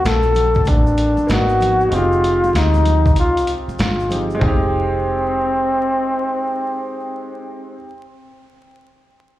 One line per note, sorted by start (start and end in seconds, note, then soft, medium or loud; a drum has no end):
0.00 1.26 D#3 medium
0.00 1.24 A3 medium
0.00 1.25 C4 medium
0.00 1.27 F#4 medium
0.05 0.64 A#1 medium
0.05 0.69 A4 loud
0.05 snare loud
0.05 closed hi-hat medium
0.05 shaker medium
0.23 high conga medium
0.23 shaker medium
0.35 closed hi-hat medium
0.35 low conga medium
0.35 shaker soft
0.54 kick medium
0.54 shaker soft
0.65 1.16 A1 loud
0.65 1.32 D4 medium
0.65 kick medium
0.65 closed hi-hat medium
0.65 high conga soft
0.65 shaker medium
0.87 shaker medium
0.97 closed hi-hat medium
0.97 shaker soft
1.17 muted fingered electric bass stroke soft
1.17 high conga medium
1.17 shaker soft
1.27 1.89 G#1 medium
1.27 1.91 A#3 medium
1.27 1.91 B3 medium
1.27 1.91 D#4 medium
1.27 1.92 F#4 medium
1.27 1.95 F#4 loud
1.27 snare loud
1.27 closed hi-hat loud
1.27 shaker medium
1.49 shaker soft
1.61 closed hi-hat medium
1.61 low conga medium
1.61 shaker soft
1.81 shaker soft
1.89 2.51 F1 loud
1.89 4.05 G#3 medium
1.89 4.06 C4 medium
1.89 closed hi-hat loud
1.89 shaker medium
1.93 4.07 D#4 medium
1.93 2.58 F4 loud
1.93 4.08 G4 medium
2.12 high conga soft
2.12 shaker soft
2.24 closed hi-hat medium
2.24 shaker soft
2.44 high conga medium
2.44 shaker soft
2.54 3.17 D2 medium
2.54 3.18 D#4 medium
2.54 snare loud
2.54 closed hi-hat loud
2.54 shaker medium
2.74 high conga medium
2.74 shaker medium
2.85 closed hi-hat medium
2.85 low conga medium
2.85 shaker soft
3.06 kick medium
3.06 shaker soft
3.16 3.65 C2 medium
3.16 3.52 F4 medium
3.16 closed hi-hat medium
3.16 high conga soft
3.16 shaker medium
3.37 closed hi-hat soft
3.37 shaker medium
3.47 closed hi-hat medium
3.47 shaker soft
3.68 muted fingered electric bass stroke soft
3.68 high conga medium
3.68 shaker soft
3.79 4.39 G1 loud
3.79 4.28 F4 medium
3.79 snare loud
3.79 closed hi-hat loud
3.79 shaker medium
4.00 shaker soft
4.09 4.33 G#3 soft
4.09 4.37 C4 soft
4.09 4.42 D#4 soft
4.09 4.42 G4 soft
4.09 closed hi-hat medium
4.09 low conga medium
4.09 shaker soft
4.30 shaker soft
4.35 7.73 G#3 medium
4.39 7.80 F1 medium
4.39 7.77 C4 medium
4.39 kick loud
4.39 floor tom loud
4.39 high conga medium
4.43 7.69 C4 loud
4.43 7.81 D#4 medium
4.47 7.85 G4 medium